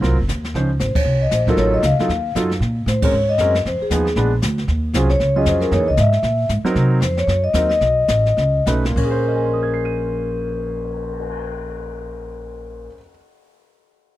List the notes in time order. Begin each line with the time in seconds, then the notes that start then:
0.01 C2 F#3 C4 F4 A#4, brush sweep, kick, snare
0.11 G#1
0.19 F#1
0.28 D#2, kick, snare, hi-hat pedal
0.44 snare
0.54 C#2 F3 C#4 D#4 C5, brush sweep, kick, snare
0.79 G#1 C5, kick, snare, hi-hat pedal
0.95 C#5, muted upright bass stroke, kick, ride
1.04 C2, brush sweep
1.22 D#5
1.31 A#1 C5, kick, snare, hi-hat pedal
1.47 F#3 D#4 F4 A4 A#4, kick, snare
1.57 A1 C#5, brush sweep, snare
1.74 D#5
1.83 C#2 F5, kick, snare, hi-hat pedal
1.99 F#3 D#4 F4 A4, muted upright bass stroke, snare
2.08 D#2, brush sweep, kick, snare
2.35 F#2 F#3 D#4 F4 A4, kick, snare, hi-hat pedal
2.51 snare
2.60 A#2, brush sweep, kick, snare
2.86 A2 C5, kick, snare, hi-hat pedal
3.02 G#3 C4 C#4 A#4 C#5, kick, ride
3.12 G#2, brush sweep
3.29 D#5
3.38 F#2 G#3 C4 C#4 A#4, kick, snare, hi-hat pedal
3.55 snare
3.65 F2 C5, brush sweep, kick, snare
3.81 G#4, muted upright bass stroke
3.90 D#2 F3 B3 D#4 G#4, kick, snare, hi-hat pedal
4.07 snare
4.15 A#1 G#3 B3 D4 B4, brush sweep, kick, snare
4.42 D2, kick, snare, hi-hat pedal
4.58 snare
4.68 D#2, brush sweep, kick, snare
4.93 C2 F#3 C#4 F4 G#4 C5, kick, snare, hi-hat pedal
5.10 C#5, snare
5.20 C#2, brush sweep, kick, snare
5.36 F#3 C#4 F4 G#4 D#5
5.46 F2 C5, kick, snare, hi-hat pedal
5.61 A#4, snare
5.71 F#2 E3 A#3 D#4 G#4 C#5, brush sweep, kick, snare
5.80 E2
5.88 C#2 D#5
5.97 G#2 E5, kick, snare, hi-hat pedal
6.12 snare
6.23 A#2, brush sweep, kick, snare
6.49 G#2, kick, snare, hi-hat pedal
6.63 F#3 C4 D#4 A#4, muted upright bass stroke, snare
6.75 C3, brush sweep, kick, snare
7.01 F2 C5, kick, snare, hi-hat pedal
7.17 C#5, snare
7.27 F#2, brush sweep, kick, snare
7.44 D#5
7.53 D#2 F#3 C4 D#4 A#4, kick, snare, hi-hat pedal
7.69 D#5, snare
7.80 B1, brush sweep, kick, snare
8.08 A1, kick, snare, hi-hat pedal
8.26 snare
8.37 C#2, brush sweep, kick, snare
8.66 B1 A3 C#4 D#4 B4, kick, snare, hi-hat pedal
8.85 A#2, snare
8.91 A#3
8.96 A#1 C#4 A#4, kick, crash
9.04 G#4
9.11 C5, cymbal swell
9.28 D#5
9.36 G#5
9.44 C6
9.54 D#6
9.63 G#6
9.74 C7
9.85 D#7